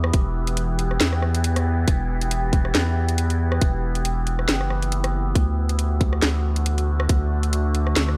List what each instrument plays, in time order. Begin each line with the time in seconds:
Already playing: sub bass E2, synth drone E3 B3 G4
0.04 cross-stick
0.14 sub bass E1, kick, closed hi-hat
0.47 closed hi-hat
0.57 closed hi-hat
0.79 closed hi-hat
0.91 cross-stick
1.01 sub bass E2, snare, closed hi-hat
1.13 cross-stick
1.22 cross-stick
1.35 closed hi-hat
1.44 closed hi-hat
1.56 cross-stick, closed hi-hat
1.88 sub bass E1, kick, closed hi-hat
2.21 closed hi-hat
2.31 closed hi-hat
2.53 kick, closed hi-hat
2.65 cross-stick
2.75 sub bass E2, snare, closed hi-hat
3.09 closed hi-hat
3.18 closed hi-hat
3.30 closed hi-hat
3.52 cross-stick
3.61 sub bass E1, kick, closed hi-hat
3.95 closed hi-hat
4.05 closed hi-hat
4.27 closed hi-hat
4.39 cross-stick
4.49 sub bass F#1, snare, closed hi-hat
4.61 cross-stick
4.70 cross-stick
4.82 closed hi-hat
4.92 closed hi-hat
5.04 cross-stick, closed hi-hat
5.35 sub bass D2, synth drone D3 A3 F#4, kick, closed hi-hat
5.69 closed hi-hat
5.79 closed hi-hat
6.01 kick, closed hi-hat
6.13 cross-stick
6.22 sub bass D2, snare, closed hi-hat
6.56 closed hi-hat
6.66 closed hi-hat
6.78 closed hi-hat
7.00 cross-stick
7.09 sub bass D2, kick, closed hi-hat
7.43 closed hi-hat
7.53 closed hi-hat
7.75 closed hi-hat
7.87 cross-stick
7.96 sub bass D2, snare, closed hi-hat
8.09 cross-stick